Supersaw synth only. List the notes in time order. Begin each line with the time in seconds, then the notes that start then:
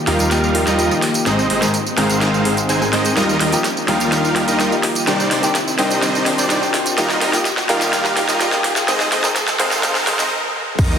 0.07 G3 D#4 F4 A#4 F5
0.19 G3 D#4 F4 A#4 F5
0.67 G3 D#4 F4 A#4 D#5
1.26 G#3 C4 D#4 C5 D#5
1.50 G#3 C4 D#4 C5 D#5
1.98 G#3 C4 D#4 C5 F5
2.10 G#3 C4 D#4 C5 F5
2.69 G#3 C4 D#4 C5 G#5
2.93 G#3 C4 D#4 C5 D#5
3.17 G3 D#4 F4 A#4 D#5
3.41 G3 D#4 F4 A#4 D#5
3.88 G3 D#4 F4 A#4 F5
4.00 G3 D#4 F4 A#4 F5
4.48 G3 D#4 F4 A#4 D#5
5.07 G3 D4 D#4 C5 D5
5.31 G3 D4 D#4 C5 D5
5.79 G3 D4 D#4 C5 D#5
5.91 G3 D4 D#4 C5 D#5
6.38 G3 D4 D#4 C5 D5
6.98 G3 D#4 F4 A#4 D#5
7.21 G3 D#4 F4 A#4 D#5
7.69 G3 D#4 F4 A#4 F5
7.81 G3 D#4 F4 A#4 F5
8.29 G3 D#4 F4 A#4 D#5
8.88 G#3 C4 D#4 C5 D#5
9.12 G#3 C4 D#4 C5 D#5
9.60 G#3 C4 D#4 C5 F5
9.71 G#3 C4 D#4 C5 F5
10.19 G#3 C4 D#4 C5 D#5
10.79 G3 D#4 F4 A#4 D#5